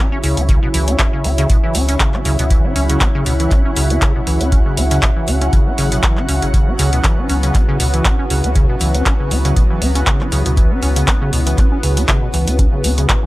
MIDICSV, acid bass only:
0, 0, Header, 1, 2, 480
1, 0, Start_track
1, 0, Key_signature, 4, "minor"
1, 0, Tempo, 504202
1, 466, Time_signature, 4, 2, 24, 8
1, 12624, End_track
2, 0, Start_track
2, 0, Title_t, "Acid bass"
2, 0, Program_c, 0, 38
2, 116, Note_on_c, 0, 61, 77
2, 176, Note_off_c, 0, 61, 0
2, 225, Note_on_c, 0, 49, 79
2, 357, Note_on_c, 0, 61, 102
2, 371, Note_off_c, 0, 49, 0
2, 416, Note_off_c, 0, 61, 0
2, 465, Note_on_c, 0, 49, 99
2, 573, Note_off_c, 0, 49, 0
2, 596, Note_on_c, 0, 47, 71
2, 656, Note_off_c, 0, 47, 0
2, 705, Note_on_c, 0, 52, 77
2, 836, Note_on_c, 0, 61, 101
2, 850, Note_off_c, 0, 52, 0
2, 926, Note_off_c, 0, 61, 0
2, 945, Note_on_c, 0, 61, 82
2, 1017, Note_off_c, 0, 61, 0
2, 1076, Note_on_c, 0, 49, 76
2, 1185, Note_on_c, 0, 61, 98
2, 1199, Note_off_c, 0, 49, 0
2, 1257, Note_off_c, 0, 61, 0
2, 1316, Note_on_c, 0, 49, 98
2, 1406, Note_off_c, 0, 49, 0
2, 1425, Note_on_c, 0, 47, 83
2, 1497, Note_off_c, 0, 47, 0
2, 1557, Note_on_c, 0, 52, 74
2, 1665, Note_on_c, 0, 61, 96
2, 1679, Note_off_c, 0, 52, 0
2, 1773, Note_off_c, 0, 61, 0
2, 1796, Note_on_c, 0, 61, 76
2, 1856, Note_off_c, 0, 61, 0
2, 1905, Note_on_c, 0, 49, 81
2, 2037, Note_on_c, 0, 61, 98
2, 2051, Note_off_c, 0, 49, 0
2, 2096, Note_off_c, 0, 61, 0
2, 2145, Note_on_c, 0, 49, 97
2, 2253, Note_off_c, 0, 49, 0
2, 2276, Note_on_c, 0, 47, 74
2, 2336, Note_off_c, 0, 47, 0
2, 2385, Note_on_c, 0, 52, 82
2, 2517, Note_on_c, 0, 61, 102
2, 2531, Note_off_c, 0, 52, 0
2, 2606, Note_off_c, 0, 61, 0
2, 2626, Note_on_c, 0, 61, 77
2, 2697, Note_off_c, 0, 61, 0
2, 2757, Note_on_c, 0, 49, 81
2, 2866, Note_on_c, 0, 61, 106
2, 2880, Note_off_c, 0, 49, 0
2, 2938, Note_off_c, 0, 61, 0
2, 2997, Note_on_c, 0, 49, 100
2, 3086, Note_off_c, 0, 49, 0
2, 3106, Note_on_c, 0, 47, 72
2, 3177, Note_off_c, 0, 47, 0
2, 3237, Note_on_c, 0, 52, 81
2, 3346, Note_on_c, 0, 61, 100
2, 3360, Note_off_c, 0, 52, 0
2, 3454, Note_off_c, 0, 61, 0
2, 3477, Note_on_c, 0, 61, 78
2, 3537, Note_off_c, 0, 61, 0
2, 3586, Note_on_c, 0, 49, 74
2, 3717, Note_on_c, 0, 61, 95
2, 3731, Note_off_c, 0, 49, 0
2, 3776, Note_off_c, 0, 61, 0
2, 3825, Note_on_c, 0, 49, 102
2, 3933, Note_off_c, 0, 49, 0
2, 3957, Note_on_c, 0, 47, 74
2, 4016, Note_off_c, 0, 47, 0
2, 4065, Note_on_c, 0, 52, 77
2, 4196, Note_on_c, 0, 61, 103
2, 4210, Note_off_c, 0, 52, 0
2, 4286, Note_off_c, 0, 61, 0
2, 4305, Note_on_c, 0, 61, 78
2, 4377, Note_off_c, 0, 61, 0
2, 4435, Note_on_c, 0, 49, 75
2, 4544, Note_on_c, 0, 61, 98
2, 4558, Note_off_c, 0, 49, 0
2, 4617, Note_off_c, 0, 61, 0
2, 4676, Note_on_c, 0, 49, 104
2, 4766, Note_off_c, 0, 49, 0
2, 4785, Note_on_c, 0, 47, 83
2, 4857, Note_off_c, 0, 47, 0
2, 4915, Note_on_c, 0, 52, 75
2, 5025, Note_on_c, 0, 61, 96
2, 5039, Note_off_c, 0, 52, 0
2, 5133, Note_off_c, 0, 61, 0
2, 5156, Note_on_c, 0, 61, 77
2, 5216, Note_off_c, 0, 61, 0
2, 5264, Note_on_c, 0, 49, 84
2, 5396, Note_on_c, 0, 61, 95
2, 5410, Note_off_c, 0, 49, 0
2, 5456, Note_off_c, 0, 61, 0
2, 5505, Note_on_c, 0, 49, 90
2, 5613, Note_off_c, 0, 49, 0
2, 5636, Note_on_c, 0, 47, 79
2, 5696, Note_off_c, 0, 47, 0
2, 5744, Note_on_c, 0, 52, 80
2, 5876, Note_on_c, 0, 61, 98
2, 5890, Note_off_c, 0, 52, 0
2, 5966, Note_off_c, 0, 61, 0
2, 5984, Note_on_c, 0, 61, 76
2, 6057, Note_off_c, 0, 61, 0
2, 6116, Note_on_c, 0, 49, 77
2, 6176, Note_off_c, 0, 49, 0
2, 6225, Note_on_c, 0, 49, 78
2, 6356, Note_on_c, 0, 61, 102
2, 6370, Note_off_c, 0, 49, 0
2, 6416, Note_off_c, 0, 61, 0
2, 6465, Note_on_c, 0, 49, 98
2, 6573, Note_off_c, 0, 49, 0
2, 6596, Note_on_c, 0, 47, 83
2, 6656, Note_off_c, 0, 47, 0
2, 6705, Note_on_c, 0, 52, 80
2, 6836, Note_on_c, 0, 61, 101
2, 6850, Note_off_c, 0, 52, 0
2, 6926, Note_off_c, 0, 61, 0
2, 6945, Note_on_c, 0, 61, 76
2, 7017, Note_off_c, 0, 61, 0
2, 7077, Note_on_c, 0, 49, 77
2, 7185, Note_on_c, 0, 61, 103
2, 7199, Note_off_c, 0, 49, 0
2, 7257, Note_off_c, 0, 61, 0
2, 7316, Note_on_c, 0, 49, 103
2, 7406, Note_off_c, 0, 49, 0
2, 7425, Note_on_c, 0, 47, 75
2, 7497, Note_off_c, 0, 47, 0
2, 7556, Note_on_c, 0, 52, 71
2, 7665, Note_on_c, 0, 61, 98
2, 7679, Note_off_c, 0, 52, 0
2, 7773, Note_off_c, 0, 61, 0
2, 7796, Note_on_c, 0, 61, 77
2, 7856, Note_off_c, 0, 61, 0
2, 7905, Note_on_c, 0, 49, 78
2, 8036, Note_on_c, 0, 61, 103
2, 8050, Note_off_c, 0, 49, 0
2, 8096, Note_off_c, 0, 61, 0
2, 8145, Note_on_c, 0, 49, 99
2, 8253, Note_off_c, 0, 49, 0
2, 8276, Note_on_c, 0, 47, 76
2, 8336, Note_off_c, 0, 47, 0
2, 8385, Note_on_c, 0, 52, 73
2, 8516, Note_on_c, 0, 61, 109
2, 8530, Note_off_c, 0, 52, 0
2, 8606, Note_off_c, 0, 61, 0
2, 8625, Note_on_c, 0, 61, 86
2, 8697, Note_off_c, 0, 61, 0
2, 8757, Note_on_c, 0, 49, 77
2, 8865, Note_on_c, 0, 61, 100
2, 8880, Note_off_c, 0, 49, 0
2, 8937, Note_off_c, 0, 61, 0
2, 8997, Note_on_c, 0, 49, 100
2, 9086, Note_off_c, 0, 49, 0
2, 9106, Note_on_c, 0, 47, 85
2, 9178, Note_off_c, 0, 47, 0
2, 9237, Note_on_c, 0, 52, 74
2, 9345, Note_on_c, 0, 61, 94
2, 9360, Note_off_c, 0, 52, 0
2, 9454, Note_off_c, 0, 61, 0
2, 9476, Note_on_c, 0, 61, 76
2, 9536, Note_off_c, 0, 61, 0
2, 9585, Note_on_c, 0, 49, 79
2, 9716, Note_on_c, 0, 61, 101
2, 9730, Note_off_c, 0, 49, 0
2, 9776, Note_off_c, 0, 61, 0
2, 9825, Note_on_c, 0, 49, 101
2, 9933, Note_off_c, 0, 49, 0
2, 9956, Note_on_c, 0, 47, 81
2, 10016, Note_off_c, 0, 47, 0
2, 10065, Note_on_c, 0, 52, 83
2, 10197, Note_on_c, 0, 61, 100
2, 10211, Note_off_c, 0, 52, 0
2, 10286, Note_off_c, 0, 61, 0
2, 10305, Note_on_c, 0, 61, 78
2, 10377, Note_off_c, 0, 61, 0
2, 10437, Note_on_c, 0, 49, 79
2, 10545, Note_on_c, 0, 61, 103
2, 10560, Note_off_c, 0, 49, 0
2, 10617, Note_off_c, 0, 61, 0
2, 10677, Note_on_c, 0, 49, 102
2, 10766, Note_off_c, 0, 49, 0
2, 10786, Note_on_c, 0, 47, 76
2, 10858, Note_off_c, 0, 47, 0
2, 10916, Note_on_c, 0, 52, 82
2, 11025, Note_on_c, 0, 61, 107
2, 11039, Note_off_c, 0, 52, 0
2, 11133, Note_off_c, 0, 61, 0
2, 11156, Note_on_c, 0, 61, 77
2, 11216, Note_off_c, 0, 61, 0
2, 11265, Note_on_c, 0, 49, 72
2, 11396, Note_on_c, 0, 61, 100
2, 11410, Note_off_c, 0, 49, 0
2, 11456, Note_off_c, 0, 61, 0
2, 11505, Note_on_c, 0, 49, 105
2, 11613, Note_off_c, 0, 49, 0
2, 11636, Note_on_c, 0, 47, 78
2, 11696, Note_off_c, 0, 47, 0
2, 11744, Note_on_c, 0, 52, 81
2, 11875, Note_on_c, 0, 61, 106
2, 11890, Note_off_c, 0, 52, 0
2, 11966, Note_off_c, 0, 61, 0
2, 11985, Note_on_c, 0, 61, 76
2, 12057, Note_off_c, 0, 61, 0
2, 12116, Note_on_c, 0, 49, 75
2, 12225, Note_on_c, 0, 61, 101
2, 12239, Note_off_c, 0, 49, 0
2, 12297, Note_off_c, 0, 61, 0
2, 12356, Note_on_c, 0, 49, 104
2, 12446, Note_off_c, 0, 49, 0
2, 12465, Note_on_c, 0, 47, 86
2, 12537, Note_off_c, 0, 47, 0
2, 12624, End_track
0, 0, End_of_file